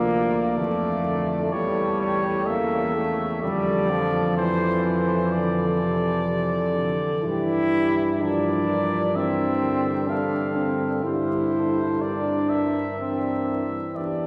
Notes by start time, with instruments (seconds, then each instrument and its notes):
Already playing: tuba D2, trombone F3, euphonium A#3, french horn section F4, cornet D5
0.57 tuba F2, trombone E3, euphonium A3, french horn section A4
1.04 trombone D3
1.52 tuba E2, trombone E3, euphonium G3, cornet C#5
2.00 cornet C#5
2.46 trombone C#3, euphonium A#3, cornet E5
2.95 euphonium A3
3.42 tuba F2, trombone D3, euphonium G3, french horn section A4, cornet D5
3.90 euphonium F3
4.37 euphonium E3, cornet C5
4.84 cornet C5
5.32 trombone D3, french horn section A4, cornet D5
5.81 trombone C3
6.26 trombone C3, french horn section A4
6.76 trombone D3
7.23 tuba G2, trombone E3, euphonium E4, french horn section G4
8.21 trombone F3, euphonium D4, french horn section A#4, cornet D5
8.68 trombone F3
9.14 trombone E3, euphonium C4, cornet E5
9.61 trombone D3
10.07 trombone D3, euphonium D4, french horn section A4, cornet F5
10.56 euphonium C4
11.03 tuba G2, euphonium E4, french horn section G4, cornet C5
11.54 french horn section A4
12.02 euphonium D4, french horn section A#4, cornet D5
12.49 cornet E5
12.99 trombone E3, euphonium C4, cornet E5
13.95 tuba E2, euphonium D4, french horn section G4, cornet D5